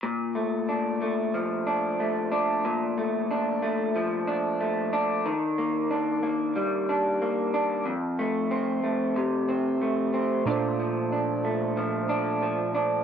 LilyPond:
<<
  \new Staff \with { instrumentName = "Synth keys" } { \time 4/4 \key bes \major \tempo 4 = 92 r1 | r1 | r1 | r1 |
<bes, d' f' a' c''>1 | }
  \new Staff \with { instrumentName = "Clean electric guitar" } { \time 4/4 \key bes \major bes,8 a8 d'8 a8 f8 d'8 a8 d'8 | bes,8 a8 d'8 a8 f8 d'8 a8 d'8 | ees8 bes8 d'8 bes8 g8 d'8 bes8 d'8 | f,8 a8 c'8 a8 c8 c'8 a8 c'8 |
<bes, d'>8 f8 d'8 a8 f8 d'8 f8 d'8 | }
>>